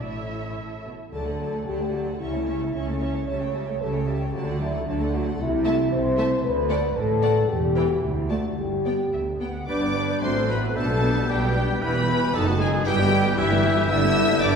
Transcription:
0.00 A1 A2 E4 A4 C#5 E5
0.57 A2
0.86 B2
1.12 D2 D3 F#3 A4 D5 A5
1.26 A3 A4 F#5
1.40 F#3 D5 A5
1.53 A3 A4 F#5
1.66 D2 D3 F#3 G4 D5 A5
1.80 A3 A4 F#5
1.93 F#3 F#4 D5 A5
2.07 A3 A4 F#5
2.20 C#2 C#3 C#4 E4 E5 C#6
2.33 A3 C#5 A5
2.47 C#4 E5 C#6
2.60 A3 C#5 A5
2.74 C#2 C#3 C#4 E5 C#6
2.87 A3 C#5 A5
3.00 C#4 E5 C#6
3.14 A3 C#5 A5
3.27 C#2 C#3 G3 C#5 E5 A5
3.40 A3 C#5 G5
3.53 G3 E5 A5
3.67 A3 C#5 G5
3.80 C#2 C#3 G3 A4 E5 A5
3.94 A3 C#5 G5
4.07 G3 G4 E5 A5
4.21 A3 C#5 G5
4.34 D2 D3 F#3 F#4 D5 A5
4.47 A3 A4 F#5
4.60 F#3 E4 D5 A5
4.73 A3 A4 F#5
4.86 D2 D3 F#3 D4 D5 A5
5.00 A3 A4 F#5
5.13 F#3 F#4 D5 A5
5.26 A3 A4 F#5
5.39 C2 C3 E4
5.65 A3 E5 A5
5.91 C2 C3 C5
6.17 A3 E5 A5
6.44 D2 B4
6.70 A3 D5 F#5
6.96 A1 A2 A4
7.22 A3 D5 F#5
7.49 E1 E2 G4
7.76 E3 B4 G5
7.90 F#4
8.02 D2 E4
8.29 A3 F#4 D5 A5
8.58 G1 G2 G4
8.85 B3 D5 G5
9.13 D2 E5
9.41 B3 F#5 G5
9.68 G1 G2 G3 D4 B4 D5 D6 G6
9.82 B3 D5
9.95 D4 B4
10.09 B3 D5
10.22 A1 A2 F#3 A3 C4 F#4 C5 C6 F#6
10.36 A3 A4
10.49 F#3 B3 F#4 B4 B5
10.62 A3 A4
10.75 B1 B2 G3 A3 B3 D4 A4 B4 A5 G6
10.89 G3 B3
11.02 B3 D4
11.16 G3 B3
11.29 B1 B2 G3 B3 D4 G4 G5
11.42 G3 B3
11.56 B3 D4
11.69 G3 B3
11.81 E1 E2 E3 B3 E4 B4 B5
11.95 G3 G4
12.09 E3 E4
12.22 G3 G4
12.33 F#1 F#2 D#3 F#3 A3 D#4 A4 D#5 A5 D#6
12.48 A3 F#4
12.60 F#3 G#3 D#4 G#4 G#5
12.73 A3 F#4
12.86 G1 G2 E3 G3 E4 G4 B4 G5 G6
13.00 B3 G4
13.12 G3 E4
13.25 B3 G4
13.38 G1 G2 E3 G3 E4 E5
13.51 B3 G4
13.64 G3 E4
13.78 B3 G4
13.89 G1 G2 D3 G3 D4 E4 E5 E6
14.04 B3 E4
14.18 G3 D4
14.31 B3 E4
14.42 G1 G2 G3 D4 D5 D6

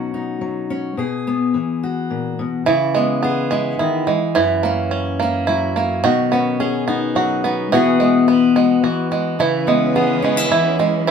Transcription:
Already playing: B2 F#3 C#4 D#4 F#4
0.14 D#4
0.41 F#3
0.70 C#4
0.97 B2 G#4
1.27 B3
1.54 E3
1.83 F#4
2.10 A#2
2.39 B2
2.66 C#3 E3 E4
2.95 G#3 B3
3.23 B3 G#4
3.51 G#3 E4
3.79 D#3 E4
4.07 E3 G#3
4.35 F#2 E3 E4
4.63 A#3 C#4
4.91 C#4
5.20 A#3 E4
5.47 F#3 E4
5.76 A#3 E4
6.04 B2 D#3 F#4
6.32 B3 C#4
6.60 C#4 G#4
6.88 B3 D#4
7.15 F#3 F#4
7.44 B3 D#4
7.72 B2 E3 B3 F#4 G#4
8.00 G#3 B3
8.28 B3 B4
8.56 G#3 F#4
8.83 E3 F#4
9.11 G#3 F#4
9.39 C#3 E3 C#4 E4 B4
9.67 G#3 B3
9.96 B3 G#4
10.22 G#3 C#4
10.37 E4
10.50 E3 E4
10.79 G#3 E4
11.05 E3 F#3 E4

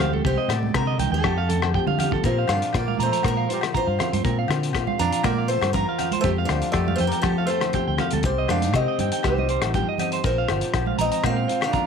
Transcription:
Already playing: D2 F2 F3 A3 C4 C5
0.00 G4 F5, cross-stick, closed hi-hat, low agogo
0.13 A4, high conga
0.25 C2 C3 G4 C5, kick
0.37 D#5
0.48 A2 C4 D5, cross-stick, closed hi-hat, low agogo
0.63 high conga
0.74 C3 D3 A#4, kick, cross-stick, low agogo
0.87 D#5
0.98 C2 D#3 G5, closed hi-hat, high conga, low conga
1.11 D#2 A4 G5
1.24 F2 G4, kick, cross-stick, low agogo
1.38 F5
1.49 A3 A4, closed hi-hat, low conga
1.62 cross-stick, low agogo
1.73 F3 G4 G5, kick
1.86 D3 F5, high conga
1.99 F5, closed hi-hat, low conga, low agogo
2.11 A4, kick, high conga
2.24 A#2 F3 C4 F4 A#4 C5, kick, closed hi-hat
2.38 F5
2.48 G2 F4 F5, cross-stick, closed hi-hat, low agogo
2.52 D4
2.62 closed hi-hat
2.73 A#2 F4 D5, kick, cross-stick, closed hi-hat, low agogo
2.79 A#3
2.88 F5, high conga
2.99 A#2 F3 C5 A#5, closed hi-hat, low conga
3.05 A3
3.12 A#5, closed hi-hat
3.23 A#2 A#4, kick, cross-stick, closed hi-hat, high conga, low agogo
3.28 F3 A#4
3.37 F5
3.49 F4 A#4 C5, closed hi-hat
3.53 G3
3.61 cross-stick, closed hi-hat, low agogo
3.74 F4 C5 A#5, muted nylon-string guitar stroke, kick, closed hi-hat, low conga
3.80 F3
3.87 G2 F5
3.99 C4 F5, cross-stick, closed hi-hat, low conga, low agogo
4.13 G2 C5, closed hi-hat, high conga
4.24 A#2 C4 A#4, kick, closed hi-hat
4.39 F5
4.48 D3 F4, cross-stick, closed hi-hat, low agogo
4.63 closed hi-hat
4.73 A#2 F4, kick, cross-stick, closed hi-hat, low agogo
4.87 F5, high conga
4.99 F2 F3 C4 D4 F5 A#5, closed hi-hat, low conga
5.12 A#5, closed hi-hat
5.23 A#2 A#3 A#4 D5, kick, cross-stick, closed hi-hat, high conga, low agogo
5.38 F5
5.48 A3 F4 C5, closed hi-hat
5.61 G2, cross-stick, closed hi-hat, low agogo
5.72 F2 F3 F4 A#4 A#5, kick, closed hi-hat, low conga
5.89 F5
5.99 C4 F5, closed hi-hat, low conga, low agogo
6.11 C5, closed hi-hat, high conga
6.20 F2 A3 C5, kick, closed hi-hat
6.25 F3 A3 C4 G4
6.38 F5
6.45 D4 F5, cross-stick, closed hi-hat, low agogo
6.50 D2 C4
6.62 closed hi-hat
6.71 F2 A3 D5, kick, cross-stick, closed hi-hat, low agogo
6.75 G4
6.88 F5, high conga
6.95 F3 A3 C5, closed hi-hat, low conga
6.99 F2 A3 G5
7.07 G3 A#4
7.12 G5, closed hi-hat
7.21 F3 A4, kick, cross-stick, closed hi-hat, high conga, low agogo
7.25 G4
7.38 F5
7.45 A3 C5, closed hi-hat
7.50 C4 A4
7.61 cross-stick, closed hi-hat, low agogo
7.73 C3 G4 G5, kick, closed hi-hat, low conga
7.87 D2 G5
7.98 A3 F5, cross-stick, closed hi-hat, low conga, low agogo
8.11 D2 A4, closed hi-hat, high conga
8.23 C2 C3 G3 C4 C5, muted clean electric guitar stroke, kick, closed hi-hat
8.38 D#5
8.48 F2 C4 D4 F5, cross-stick, closed hi-hat, high conga, low agogo
8.62 D#4, closed hi-hat
8.73 C3 C4 G4 D#5, kick, cross-stick, closed hi-hat, low agogo
8.88 D#5
8.99 G2 D#3 C4 G5, closed hi-hat, low conga
9.12 G5, closed hi-hat
9.23 C2 G3 G4 C5, kick, cross-stick, closed hi-hat, high conga, low agogo
9.38 D#5, high conga
9.49 D#4 C5, closed hi-hat
9.62 A1, cross-stick, closed hi-hat, low agogo
9.74 G2 F3 G4 A#4 G5, kick, closed hi-hat, low conga
9.89 D#5
9.98 C4 D#5, closed hi-hat, low conga, low agogo
10.12 C5, closed hi-hat
10.23 A#1 A#2 F3 C4 A#4 C5, kick, closed hi-hat
10.38 F5
10.48 G1 F4, cross-stick, closed hi-hat, low agogo
10.61 closed hi-hat
10.74 A#1 F4, kick, cross-stick, closed hi-hat, low agogo
10.86 F5, high conga
10.98 A#1 C4 D#5 A#5, closed hi-hat, low conga
11.03 C4
11.12 A#5, closed hi-hat
11.24 A#2 A#4 F5, kick, cross-stick, closed hi-hat, high conga, low agogo
11.28 C4
11.36 F5
11.48 F4 C5, closed hi-hat
11.61 F5, cross-stick, closed hi-hat, low agogo
11.67 D4
11.73 F2 F4 A#5, kick, closed hi-hat, low conga

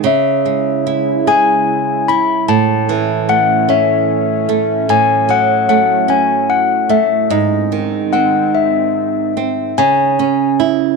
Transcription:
0.04 C#3 G#3 E4 E5
0.46 G#3
0.87 E4
1.27 G#4 G#5
2.08 E4 B5
2.48 A2 E3 C#4 A5
2.89 E3
3.29 A3 F#5
3.69 C#4 E5
4.49 A3
4.89 A2 F#3 G#5
5.29 F#3 F#5
5.69 A3 F#5
6.08 C#4 G#5
6.50 F#5
6.89 A3 E5
7.30 G#2 D#3 C4 D#5
7.72 D#3
8.13 C4 F#5
8.55 E5
9.37 C4
9.78 C#3 G#5
10.19 C#4
10.60 E4

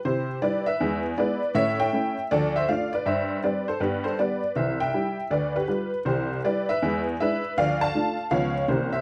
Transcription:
0.05 C3 E4 G4 C5
0.42 G3 E4 G4 B4 D5
0.66 B4 E5
0.80 E2 G#3
1.18 G#3 B3 E4 B4 D5
1.55 A2 C#4 C#5 E5
1.80 E5 G5
1.93 A3 C#4 E4
2.31 D2 F3 A4 D5
2.56 C5 E5
2.69 A3 D4 F4 D5 F5
2.93 B4 D5
3.06 G2 C5 E5
3.43 G3 C4 G4 B4 D5
3.68 A4 C5
3.80 G2 B3 G4 B4
4.04 A4 C5
4.19 G3 B3 G4 B4 D5
4.56 C2 E3 C5 E5
4.80 E5 G5
4.94 G3 E4 G4
5.31 D2 B4 D5
5.56 G4 B4
5.68 G3 F4 G4
6.05 C2 E3 G4 C5
6.44 G3 E4 G4 B4 D5
6.69 B4 E5
6.82 E2 G#3
7.20 G#3 D4 E4 B4 E5
7.57 D2 F3 D5 F5
7.81 F5 A5
7.95 A3 D4 F4
8.31 C#2 F3 B3 F4 C#5 F5
8.68 C2 E3 A#3 C#4 E4 G4 C5
8.93 C5 E5

